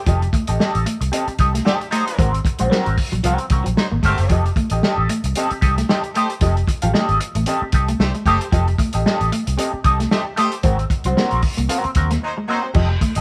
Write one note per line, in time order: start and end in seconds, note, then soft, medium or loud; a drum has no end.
0.06 0.27 F1 medium
0.06 0.16 F3 medium
0.06 0.28 G4 medium
0.06 0.22 A4 medium
0.06 0.21 D#5 medium
0.06 kick loud
0.06 closed hi-hat medium
0.22 muted clean electric guitar stroke soft
0.22 closed hi-hat soft
0.33 0.43 A3 medium
0.33 muted clean electric guitar stroke soft
0.33 kick loud
0.33 closed hi-hat medium
0.47 0.57 A1 medium
0.47 0.58 G4 medium
0.47 0.59 A4 medium
0.47 0.60 D#5 medium
0.47 closed hi-hat medium
0.60 0.84 G4 medium
0.60 0.85 A4 loud
0.60 0.85 D#5 medium
0.60 snare loud
0.75 0.84 A1 medium
0.75 closed hi-hat soft
0.86 0.96 A3 medium
0.86 muted clean electric guitar stroke soft
0.86 closed hi-hat medium
1.01 1.10 C2 medium
1.01 muted clean electric guitar stroke medium
1.01 closed hi-hat medium
1.12 1.23 C4 loud
1.12 1.33 G4 medium
1.12 1.28 A4 medium
1.12 1.27 D#5 medium
1.12 closed hi-hat loud
1.28 muted fingered electric bass stroke soft
1.28 muted clean electric guitar stroke soft
1.28 closed hi-hat soft
1.39 1.59 C2 medium
1.39 1.56 G4 medium
1.39 1.53 A4 medium
1.39 1.52 D#5 medium
1.39 kick medium
1.39 snare soft
1.39 closed hi-hat medium
1.53 1.62 A3 medium
1.53 muted clean electric guitar stroke soft
1.53 snare soft
1.53 closed hi-hat medium
1.65 1.75 A3 medium
1.65 1.75 G4 medium
1.65 1.86 G4 medium
1.65 1.80 A4 medium
1.65 1.75 C5 medium
1.65 1.79 D#5 medium
1.65 snare loud
1.81 muted clean electric guitar stroke soft
1.81 closed hi-hat soft
1.91 2.27 F#3 medium
1.91 2.02 A3 medium
1.91 2.27 D#4 medium
1.91 2.08 G4 medium
1.91 2.06 A4 medium
1.91 2.27 C5 loud
1.91 2.05 D#5 medium
1.91 closed hi-hat medium
2.07 muted clean electric guitar stroke soft
2.07 closed hi-hat soft
2.19 2.39 G#1 loud
2.19 2.28 G#3 medium
2.19 2.39 C4 medium
2.19 2.33 F#4 medium
2.19 2.32 A#4 medium
2.19 kick loud
2.19 closed hi-hat medium
2.33 muted clean electric guitar stroke medium
2.33 closed hi-hat soft
2.45 muted clean electric guitar stroke soft
2.45 kick loud
2.45 closed hi-hat medium
2.59 2.69 A#1 medium
2.59 2.67 G#3 medium
2.59 2.69 C4 medium
2.59 2.70 F#4 medium
2.59 2.71 C5 medium
2.59 closed hi-hat medium
2.70 2.81 F#3 medium
2.70 2.95 C4 loud
2.70 2.96 F#4 loud
2.70 2.96 A#4 loud
2.70 snare loud
2.86 2.95 G#1 medium
2.86 muted clean electric guitar stroke soft
2.86 closed hi-hat soft
2.98 muted clean electric guitar stroke medium
2.98 kick medium
2.98 open hi-hat medium
3.12 3.22 A#1 medium
3.12 3.20 F#3 medium
3.12 muted clean electric guitar stroke soft
3.12 closed hi-hat medium
3.24 3.36 C2 loud
3.24 3.34 F3 medium
3.24 3.45 C4 medium
3.24 3.39 F#4 loud
3.24 3.38 A#4 loud
3.24 closed hi-hat medium
3.38 muted clean electric guitar stroke soft
3.38 closed hi-hat soft
3.50 3.62 C2 medium
3.50 3.68 C4 medium
3.50 3.66 F#4 medium
3.50 3.65 A#4 medium
3.50 kick loud
3.50 snare soft
3.50 closed hi-hat medium
3.64 3.75 A#1 medium
3.64 3.72 F#3 medium
3.64 muted clean electric guitar stroke soft
3.64 closed hi-hat medium
3.77 3.87 F#3 medium
3.77 3.87 D#4 medium
3.77 3.87 C5 medium
3.77 muted clean electric guitar stroke soft
3.77 snare loud
3.92 4.01 G#1 medium
3.92 3.99 A#3 medium
3.92 muted clean electric guitar stroke soft
4.03 4.15 G1 medium
4.03 4.13 G#3 medium
4.03 4.39 A3 medium
4.03 4.25 C4 medium
4.03 4.19 F#4 medium
4.03 4.39 G4 medium
4.03 4.18 A#4 medium
4.03 4.39 C5 medium
4.03 kick medium
4.03 closed hi-hat medium
4.18 4.30 F#1 medium
4.18 muted clean electric guitar stroke soft
4.18 closed hi-hat soft
4.30 4.50 F1 loud
4.30 4.40 F3 medium
4.30 4.51 G4 medium
4.30 4.46 A4 medium
4.30 4.45 D#5 medium
4.30 kick loud
4.30 closed hi-hat medium
4.46 muted clean electric guitar stroke soft
4.46 closed hi-hat soft
4.56 4.67 A3 medium
4.56 muted clean electric guitar stroke soft
4.56 kick loud
4.56 closed hi-hat medium
4.70 4.80 A1 medium
4.70 4.82 G4 medium
4.70 4.83 A4 soft
4.70 4.83 D#5 medium
4.70 closed hi-hat medium
4.83 5.08 G4 loud
4.83 5.08 A4 loud
4.83 5.08 D#5 loud
4.83 snare loud
4.98 5.06 A1 medium
5.09 5.19 A3 medium
5.09 muted clean electric guitar stroke soft
5.09 closed hi-hat medium
5.24 5.33 C2 medium
5.24 muted clean electric guitar stroke medium
5.24 closed hi-hat medium
5.35 5.46 C4 medium
5.35 5.57 G4 loud
5.35 5.52 A4 loud
5.35 5.51 D#5 medium
5.35 closed hi-hat loud
5.50 muted fingered electric bass stroke soft
5.50 muted clean electric guitar stroke soft
5.50 closed hi-hat soft
5.61 5.82 C2 medium
5.61 5.78 G4 medium
5.61 5.76 A4 medium
5.61 5.75 D#5 medium
5.61 kick medium
5.61 snare soft
5.61 closed hi-hat medium
5.76 5.85 A3 medium
5.76 muted clean electric guitar stroke soft
5.76 snare soft
5.76 closed hi-hat medium
5.89 5.98 A3 medium
5.89 5.98 G4 medium
5.89 6.09 G4 medium
5.89 6.03 A4 medium
5.89 5.98 C5 medium
5.89 6.03 D#5 loud
5.89 snare loud
6.04 muted clean electric guitar stroke soft
6.04 closed hi-hat soft
6.15 6.32 A3 medium
6.15 6.26 A3 medium
6.15 6.32 G4 medium
6.15 6.30 A4 medium
6.15 6.32 C5 medium
6.15 6.28 D#5 medium
6.15 closed hi-hat medium
6.29 muted clean electric guitar stroke soft
6.29 closed hi-hat soft
6.41 6.61 F1 loud
6.41 6.52 F3 medium
6.41 6.62 G4 medium
6.41 6.56 A4 medium
6.41 6.55 D#5 medium
6.41 kick loud
6.41 closed hi-hat medium
6.56 muted clean electric guitar stroke soft
6.56 closed hi-hat soft
6.68 muted clean electric guitar stroke soft
6.68 kick medium
6.68 closed hi-hat medium
6.82 6.92 A1 medium
6.82 6.91 F3 medium
6.82 6.92 G4 medium
6.82 6.93 A4 medium
6.82 6.94 F5 medium
6.82 closed hi-hat medium
6.94 7.05 A3 medium
6.94 7.18 G4 loud
6.94 7.19 A4 medium
6.94 7.19 D#5 loud
6.94 snare loud
7.09 7.18 G#1 medium
7.09 muted clean electric guitar stroke soft
7.09 closed hi-hat soft
7.20 muted clean electric guitar stroke medium
7.20 closed hi-hat medium
7.35 7.44 A1 medium
7.35 7.43 A3 medium
7.35 muted clean electric guitar stroke soft
7.35 closed hi-hat medium
7.46 7.57 C4 medium
7.46 7.68 G4 medium
7.46 7.62 A4 loud
7.46 7.61 D#5 loud
7.46 closed hi-hat medium
7.62 muted fingered electric bass stroke soft
7.62 muted clean electric guitar stroke soft
7.72 7.93 C2 medium
7.72 7.91 G4 medium
7.72 7.89 A4 medium
7.72 7.88 D#5 medium
7.72 kick loud
7.72 snare soft
7.72 closed hi-hat medium
7.88 7.96 A3 medium
7.88 muted clean electric guitar stroke soft
7.88 closed hi-hat medium
8.00 8.11 C2 loud
8.00 8.10 A3 medium
8.00 8.10 G4 medium
8.00 8.09 C5 medium
8.00 muted clean electric guitar stroke medium
8.00 snare loud
8.15 8.23 G#3 medium
8.15 muted clean electric guitar stroke soft
8.15 closed hi-hat soft
8.26 8.37 F#1 medium
8.26 8.43 A3 medium
8.26 8.36 A3 medium
8.26 8.43 G4 medium
8.26 8.47 G4 medium
8.26 8.41 A4 medium
8.26 8.43 C5 medium
8.26 8.40 D#5 medium
8.26 kick medium
8.26 closed hi-hat medium
8.41 muted clean electric guitar stroke soft
8.41 closed hi-hat soft
8.52 8.72 F1 loud
8.52 8.62 F3 medium
8.52 8.73 G4 medium
8.52 8.67 A4 medium
8.52 8.66 D#5 medium
8.52 kick loud
8.52 closed hi-hat medium
8.67 muted clean electric guitar stroke soft
8.67 closed hi-hat soft
8.78 8.89 A3 medium
8.78 muted clean electric guitar stroke soft
8.78 kick loud
8.78 closed hi-hat medium
8.93 9.03 A1 medium
8.93 9.04 G4 medium
8.93 9.05 A4 medium
8.93 9.06 D#5 medium
8.93 closed hi-hat medium
9.06 9.30 G4 loud
9.06 9.30 A4 loud
9.06 9.31 D#5 loud
9.06 snare loud
9.21 9.29 A1 medium
9.21 closed hi-hat soft
9.32 9.42 A3 medium
9.32 muted clean electric guitar stroke soft
9.32 closed hi-hat medium
9.47 9.56 C2 medium
9.47 muted clean electric guitar stroke soft
9.47 closed hi-hat medium
9.58 9.68 C4 loud
9.58 9.79 G4 medium
9.58 9.72 A4 medium
9.58 9.72 D#5 medium
9.58 closed hi-hat medium
9.73 muted clean electric guitar stroke soft
9.73 muted fingered electric bass stroke medium
9.84 10.05 C2 medium
9.84 10.01 G4 medium
9.84 9.99 A4 medium
9.84 9.98 D#5 medium
9.84 kick loud
9.84 closed hi-hat medium
9.99 10.07 A3 medium
9.99 muted clean electric guitar stroke soft
9.99 snare soft
9.99 closed hi-hat medium
10.11 10.21 A3 medium
10.11 10.32 G4 medium
10.11 10.21 G4 medium
10.11 10.26 A4 medium
10.11 10.21 C5 medium
10.11 10.24 D#5 medium
10.11 snare loud
10.25 muted clean electric guitar stroke soft
10.36 10.54 A3 medium
10.36 10.48 A3 medium
10.36 10.54 G4 medium
10.36 10.52 A4 medium
10.36 10.54 C5 loud
10.36 10.51 D#5 medium
10.36 closed hi-hat medium
10.52 muted clean electric guitar stroke soft
10.52 closed hi-hat soft
10.63 10.84 G#1 medium
10.63 10.75 G#3 medium
10.63 10.84 C4 medium
10.63 10.79 F#4 medium
10.63 10.77 A#4 medium
10.63 kick loud
10.63 closed hi-hat medium
10.79 muted clean electric guitar stroke soft
10.79 closed hi-hat soft
10.90 muted clean electric guitar stroke soft
10.90 kick medium
10.90 closed hi-hat medium
11.04 11.14 C2 medium
11.04 11.13 F#3 medium
11.04 11.16 C4 medium
11.04 11.16 F#4 medium
11.04 11.18 C5 medium
11.04 closed hi-hat medium
11.17 11.27 A#3 medium
11.17 11.41 C4 medium
11.17 11.42 F#4 loud
11.17 11.42 A#4 medium
11.17 snare loud
11.31 11.41 A#1 medium
11.31 muted clean electric guitar stroke soft
11.31 closed hi-hat soft
11.43 kick medium
11.43 open hi-hat medium
11.57 11.67 C2 medium
11.57 11.65 A#3 medium
11.57 muted clean electric guitar stroke medium
11.57 closed hi-hat medium
11.69 11.79 C4 loud
11.69 11.90 C4 medium
11.69 11.84 F#4 medium
11.69 11.84 A#4 medium
11.69 closed hi-hat loud
11.84 muted fingered electric bass stroke medium
11.84 muted clean electric guitar stroke soft
11.84 closed hi-hat soft
11.95 12.16 D#2 medium
11.95 12.13 C4 medium
11.95 12.12 F#4 medium
11.95 12.10 A#4 medium
11.95 kick medium
11.95 snare soft
11.95 closed hi-hat medium
12.11 12.19 A#3 medium
12.11 muted clean electric guitar stroke soft
12.11 snare soft
12.11 closed hi-hat medium
12.23 12.33 F#3 medium
12.23 12.33 D#4 medium
12.23 12.33 C5 medium
12.23 muted clean electric guitar stroke soft
12.37 12.45 G#3 medium
12.37 muted clean electric guitar stroke medium
12.48 12.65 F#3 medium
12.48 12.58 A#3 medium
12.48 12.70 C4 medium
12.48 12.65 D#4 medium
12.48 12.63 F#4 medium
12.48 12.62 A#4 medium
12.48 12.66 C5 loud
12.63 muted clean electric guitar stroke soft
12.74 12.95 F1 loud
12.74 12.85 F3 medium
12.74 12.95 G4 medium
12.74 12.89 A4 medium
12.74 12.89 D#5 medium
12.74 kick loud
12.74 crash loud
12.90 muted clean electric guitar stroke soft
13.01 13.12 A3 medium
13.01 muted clean electric guitar stroke soft
13.01 kick medium
13.01 closed hi-hat medium
13.15 13.21 A1 medium
13.15 13.21 G4 soft
13.15 13.21 A4 medium
13.15 13.21 D#5 medium
13.15 closed hi-hat medium